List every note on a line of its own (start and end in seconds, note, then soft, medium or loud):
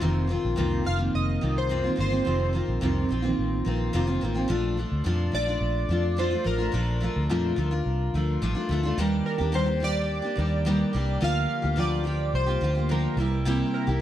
0.00 0.36 F1 medium
0.00 0.29 F2 medium
0.00 0.30 C3 medium
0.00 0.26 D#3 medium
0.00 0.28 A#3 medium
0.00 0.29 C4 medium
0.00 0.30 F4 medium
0.27 0.56 D#3 medium
0.27 0.56 A#3 medium
0.27 0.57 C4 medium
0.27 0.57 F4 medium
0.45 0.56 A#1 medium
0.56 0.81 C2 medium
0.56 0.85 F2 medium
0.56 0.86 C3 medium
0.56 0.83 D#3 medium
0.56 0.84 A#3 medium
0.56 0.85 C4 medium
0.56 0.86 F4 medium
0.84 1.09 F1 medium
0.84 0.99 D#3 soft
0.84 0.98 A#3 medium
0.84 0.97 C4 medium
0.84 0.96 F4 medium
0.84 0.99 F5 loud
0.97 1.40 D#3 soft
0.97 1.41 A#3 medium
0.97 1.41 C4 medium
0.97 1.41 F4 medium
1.14 1.37 F1 medium
1.14 1.58 D#5 medium
1.41 1.87 C2 medium
1.41 1.69 D#3 medium
1.41 1.70 A#3 medium
1.41 1.70 C4 medium
1.41 1.70 F4 medium
1.58 1.99 C5 medium
1.69 1.84 F2 medium
1.69 1.84 C3 medium
1.69 1.84 D#3 medium
1.69 1.85 A#3 medium
1.69 1.83 C4 medium
1.69 1.82 F4 medium
1.84 1.94 D#3 soft
1.84 1.96 A#3 soft
1.84 1.97 C4 medium
1.84 1.98 F4 medium
1.96 2.21 G1 medium
1.96 2.11 D#3 medium
1.96 2.11 A#3 medium
1.96 2.10 C4 medium
1.96 2.09 F4 medium
2.00 2.51 C5 medium
2.10 2.25 D#3 soft
2.10 2.25 A#3 medium
2.10 2.26 C4 soft
2.10 2.25 F4 medium
2.25 2.60 F1 loud
2.25 2.53 F2 medium
2.25 2.54 C3 medium
2.25 2.52 D#3 medium
2.25 2.53 A#3 medium
2.25 2.54 C4 medium
2.25 2.55 F4 medium
2.53 2.81 D#3 medium
2.53 2.82 A#3 soft
2.53 2.82 C4 medium
2.53 2.82 F4 medium
2.68 2.79 A#1 medium
2.81 3.05 C2 medium
2.81 3.10 F2 medium
2.81 3.10 C3 medium
2.81 3.08 D#3 medium
2.81 3.09 A#3 medium
2.81 3.10 C4 medium
2.81 3.11 F4 medium
3.09 3.33 A#1 medium
3.09 3.24 D#3 medium
3.09 3.23 A#3 medium
3.09 3.23 C4 medium
3.09 3.21 F4 medium
3.22 3.63 D#3 medium
3.22 3.65 A#3 medium
3.22 3.66 C4 medium
3.22 3.65 F4 medium
3.38 3.61 A1 medium
3.65 3.89 A#1 medium
3.65 3.92 D#3 medium
3.65 3.93 A#3 medium
3.65 3.93 C4 medium
3.65 3.94 F4 medium
3.93 4.17 F1 medium
3.93 4.08 F2 medium
3.93 4.08 C3 medium
3.93 4.08 D#3 medium
3.93 4.07 A#3 medium
3.93 4.06 C4 medium
3.93 4.06 F4 medium
4.07 4.20 D#3 medium
4.07 4.21 A#3 medium
4.07 4.22 C4 medium
4.07 4.21 F4 medium
4.21 4.45 A1 medium
4.21 4.36 D#3 medium
4.21 4.35 A#3 medium
4.21 4.34 C4 medium
4.21 4.33 F4 medium
4.34 4.48 D#3 soft
4.34 4.49 A#3 medium
4.34 4.49 C4 medium
4.34 4.49 F4 medium
4.48 4.84 A#1 medium
4.48 4.77 A#2 medium
4.48 4.76 F3 medium
4.48 4.77 A3 medium
4.48 4.78 D4 loud
4.48 4.78 F4 loud
4.77 5.04 F3 medium
4.77 5.05 A3 medium
4.77 5.05 D4 medium
4.77 5.05 F4 medium
4.92 5.03 D2 medium
5.04 5.28 F2 medium
5.04 5.33 A#2 medium
5.04 5.31 F3 medium
5.04 5.32 A3 medium
5.04 5.33 D4 medium
5.04 5.34 F4 medium
5.32 5.56 A#1 medium
5.32 5.47 F3 medium
5.32 5.48 A3 medium
5.32 5.48 D4 medium
5.32 5.45 F4 medium
5.32 6.21 D5 loud
5.47 5.89 A3 soft
5.47 5.89 D4 medium
5.47 5.89 F4 medium
5.61 5.84 A#1 medium
5.89 6.34 F2 medium
5.89 6.17 F3 medium
5.89 6.17 A3 medium
5.89 6.18 D4 medium
5.89 6.18 F4 medium
6.16 6.31 A#2 medium
6.16 6.32 F3 medium
6.16 6.32 A3 medium
6.16 6.31 D4 medium
6.16 6.29 F4 medium
6.16 6.45 C5 medium
6.30 6.44 A3 soft
6.30 6.45 D4 soft
6.30 6.45 F4 medium
6.44 6.68 A1 medium
6.44 6.59 F3 medium
6.44 6.60 A3 medium
6.44 6.59 D4 medium
6.44 6.57 F4 medium
6.44 8.38 A#4 medium
6.58 6.72 A3 soft
6.58 6.73 D4 medium
6.58 6.73 F4 medium
6.72 7.07 A#1 loud
6.72 7.01 A#2 medium
6.72 6.99 F3 medium
6.72 7.00 A3 medium
6.72 7.02 D4 medium
6.72 7.02 F4 medium
7.00 7.29 F3 medium
7.00 7.30 A3 medium
7.00 7.30 D4 medium
7.00 7.30 F4 medium
7.16 7.30 D2 medium
7.29 7.52 F2 medium
7.29 7.58 A#2 medium
7.29 7.55 F3 medium
7.29 7.57 A3 medium
7.29 7.57 D4 medium
7.29 7.58 F4 medium
7.56 7.80 D2 loud
7.56 7.71 F3 medium
7.56 7.72 A3 medium
7.56 7.71 D4 medium
7.56 7.70 F4 medium
7.71 8.14 D4 medium
7.71 8.13 F4 medium
7.86 8.08 C2 medium
8.14 8.36 D2 medium
8.14 8.41 F3 soft
8.14 8.41 A3 medium
8.14 8.41 D4 medium
8.14 8.42 F4 medium
8.41 8.53 A1 loud
8.41 8.56 A#2 medium
8.41 8.56 F3 medium
8.41 8.56 A3 medium
8.41 8.55 D4 medium
8.41 8.53 F4 medium
8.54 8.70 A3 soft
8.54 8.70 D4 medium
8.54 8.69 F4 medium
8.69 8.92 D2 medium
8.69 8.83 F3 medium
8.69 8.84 A3 medium
8.69 8.84 D4 medium
8.69 8.82 F4 medium
8.83 8.99 A3 medium
8.83 8.99 D4 medium
8.83 8.98 F4 medium
8.98 9.20 D#2 medium
8.98 9.40 D#3 medium
8.98 9.40 G3 loud
8.98 9.40 A#3 medium
8.98 9.40 D4 medium
8.98 9.37 G4 medium
9.26 9.55 A#4 medium
9.38 10.20 D#2 loud
9.38 9.53 D4 medium
9.38 9.53 G4 medium
9.42 9.52 A#3 soft
9.52 9.67 D#3 medium
9.52 9.67 G3 medium
9.52 9.68 A#3 medium
9.52 9.67 D4 medium
9.52 9.65 G4 medium
9.52 9.81 C5 medium
9.66 9.80 A#3 soft
9.66 9.81 D4 soft
9.66 9.81 G4 soft
9.80 10.23 G3 medium
9.80 10.24 A#3 medium
9.80 10.23 D4 medium
9.80 10.21 G4 medium
9.80 11.27 D5 loud
10.22 10.35 A#3 soft
10.22 10.37 D4 soft
10.22 10.37 G4 medium
10.35 10.83 D#2 loud
10.35 10.65 G3 medium
10.35 10.65 A#3 medium
10.35 10.66 D4 medium
10.35 10.66 G4 medium
10.65 10.93 D#3 medium
10.65 10.92 G3 medium
10.65 10.92 A#3 medium
10.65 10.93 D4 medium
10.65 10.94 G4 medium
10.93 11.17 C2 medium
10.93 11.21 G3 medium
10.93 11.20 A#3 medium
10.93 11.22 D4 medium
10.93 11.22 G4 medium
11.21 11.45 D2 loud
11.21 11.63 D3 medium
11.21 11.63 F3 medium
11.21 11.64 A#3 medium
11.21 11.63 F4 medium
11.21 11.61 G4 medium
11.21 11.80 F5 loud
11.62 12.30 D2 loud
11.62 11.76 A#3 soft
11.62 11.77 F4 soft
11.62 11.77 G4 soft
11.76 12.05 D3 medium
11.76 12.03 F3 medium
11.76 12.04 A#3 medium
11.76 12.05 F4 medium
11.76 12.06 G4 medium
11.76 12.36 D5 loud
12.04 12.47 F3 medium
12.04 12.47 A#3 medium
12.04 12.47 F4 medium
12.04 12.45 G4 medium
12.34 12.56 C2 medium
12.34 12.92 C5 medium
12.46 12.60 A#3 soft
12.46 12.62 F4 soft
12.46 12.61 G4 medium
12.61 13.06 D2 medium
12.61 12.75 F3 medium
12.61 12.76 A#3 medium
12.61 12.76 F4 medium
12.61 12.74 G4 medium
12.75 12.90 A#3 soft
12.75 12.90 F4 soft
12.75 12.89 G4 soft
12.89 13.17 D3 medium
12.89 13.16 F3 medium
12.89 13.17 A#3 medium
12.89 13.18 F4 medium
12.89 13.18 G4 medium
12.89 13.30 A#4 medium
13.17 13.62 C2 medium
13.17 13.45 G3 medium
13.17 13.45 A#3 medium
13.17 13.46 E4 medium
13.21 13.47 G4 medium
13.45 13.87 C3 medium
13.45 13.88 G3 medium
13.45 13.88 A#3 loud
13.45 13.88 E4 medium
13.45 13.86 G4 loud
13.74 14.01 A#4 medium
13.87 14.01 C2 medium
13.87 14.00 A#3 soft
13.87 14.01 E4 soft
13.87 14.01 G4 medium